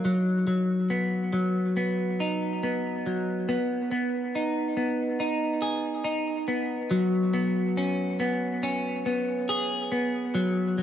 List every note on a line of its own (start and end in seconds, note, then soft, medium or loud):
0.00 0.14 A#3 medium
0.00 2.20 D#4 medium
0.05 0.46 F#3 medium
0.47 1.32 F#3 medium
0.90 1.76 B3 medium
1.33 3.05 F#3 medium
1.77 2.63 B3 medium
2.20 4.35 D#4 medium
2.63 3.48 B3 medium
3.06 3.57 F#3 soft
3.49 3.91 B3 medium
3.91 4.76 B3 medium
4.35 5.19 D#4 medium
4.77 6.47 B3 soft
5.20 6.03 D#4 medium
5.62 9.12 G#4 medium
6.04 6.99 D#4 medium
6.48 7.33 B3 soft
6.91 10.34 F#3 medium
7.34 8.19 B3 medium
7.77 8.62 C#4 medium
8.20 9.06 B3 medium
8.63 10.43 C#4 medium
9.06 9.91 B3 medium
9.49 10.43 G#4 medium
9.92 10.83 B3 medium
10.35 10.78 F#3 medium
10.78 10.83 F#3 medium